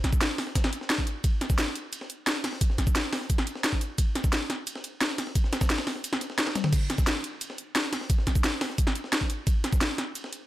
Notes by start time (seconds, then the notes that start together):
0.04 kick, snare, closed hi-hat, ride, cabasa
0.13 kick, cabasa
0.21 snare, closed hi-hat, ride, cabasa
0.30 ride
0.38 snare, open hi-hat, ride
0.47 snare
0.55 kick, snare, closed hi-hat, ride, cabasa
0.64 snare, ride
0.73 closed hi-hat, ride, cabasa
0.81 snare
0.90 snare, closed hi-hat, ride, cabasa
0.98 kick
1.07 closed hi-hat, ride, cabasa
1.24 kick, closed hi-hat, ride, cabasa
1.41 snare, closed hi-hat, ride, cabasa
1.50 kick, snare, cabasa
1.58 snare, closed hi-hat, ride, cabasa
1.67 snare
1.75 closed hi-hat, ride
1.93 closed hi-hat, ride, cabasa
2.01 snare
2.10 closed hi-hat, cabasa
2.27 snare, closed hi-hat, ride, cabasa
2.35 ride
2.44 snare, closed hi-hat, open hi-hat, cabasa
2.53 snare
2.61 kick, closed hi-hat, ride, cabasa
2.70 snare
2.78 kick, snare, closed hi-hat, ride, cabasa
2.87 kick, cabasa
2.95 snare, closed hi-hat, ride, cabasa
3.04 ride
3.13 snare, open hi-hat, ride
3.21 snare
3.30 kick, closed hi-hat, ride, cabasa
3.38 snare
3.47 closed hi-hat, ride, cabasa
3.55 snare
3.64 snare, closed hi-hat, ride, cabasa
3.73 kick
3.81 closed hi-hat, ride, cabasa
3.98 kick, closed hi-hat, ride, cabasa
4.15 snare, closed hi-hat, ride, cabasa
4.24 kick, snare, cabasa
4.33 snare, closed hi-hat, ride, cabasa
4.41 snare
4.50 snare, closed hi-hat, ride
4.67 closed hi-hat, ride, cabasa
4.75 snare
4.84 closed hi-hat, ride, cabasa
5.01 snare, closed hi-hat, ride, cabasa
5.10 ride
5.18 snare, closed hi-hat, open hi-hat, cabasa
5.27 snare
5.35 kick, closed hi-hat, ride, cabasa
5.44 snare
5.53 snare, closed hi-hat, ride, cabasa
5.61 kick, snare, ride, cabasa
5.70 snare, closed hi-hat, ride, cabasa
5.78 snare, ride
5.87 snare, open hi-hat, ride
5.95 snare
6.04 closed hi-hat, ride, cabasa
6.13 snare
6.21 snare, closed hi-hat, ride, cabasa
6.30 snare
6.38 snare, closed hi-hat, ride, cabasa
6.47 snare, ride
6.55 snare, closed hi-hat, high tom, ride, cabasa
6.64 snare, mid tom, ride
6.73 kick, closed hi-hat, ride, crash, cabasa
6.90 snare, closed hi-hat, ride, cabasa
6.98 kick, snare, cabasa
7.07 snare, closed hi-hat, ride, cabasa
7.15 snare
7.24 closed hi-hat, ride
7.41 closed hi-hat, ride, cabasa
7.50 snare
7.58 closed hi-hat, cabasa
7.75 snare, closed hi-hat, ride, cabasa
7.84 ride
7.93 snare, closed hi-hat, open hi-hat, cabasa
8.01 snare
8.10 kick, closed hi-hat, ride, cabasa
8.18 snare
8.27 kick, snare, closed hi-hat, ride, cabasa
8.35 kick, cabasa
8.44 snare, closed hi-hat, ride, cabasa
8.53 ride
8.61 snare, open hi-hat, ride
8.70 snare
8.78 kick, closed hi-hat, ride, cabasa
8.87 snare
8.95 closed hi-hat, ride, cabasa
9.04 snare
9.13 snare, closed hi-hat, ride, cabasa
9.21 kick
9.30 closed hi-hat, ride, cabasa
9.47 kick, closed hi-hat, ride, cabasa
9.64 snare, closed hi-hat, ride, cabasa
9.73 kick, snare, cabasa
9.81 snare, closed hi-hat, ride, cabasa
9.90 snare
9.98 snare, closed hi-hat, ride
10.15 closed hi-hat, ride, cabasa
10.24 snare
10.33 closed hi-hat, ride, cabasa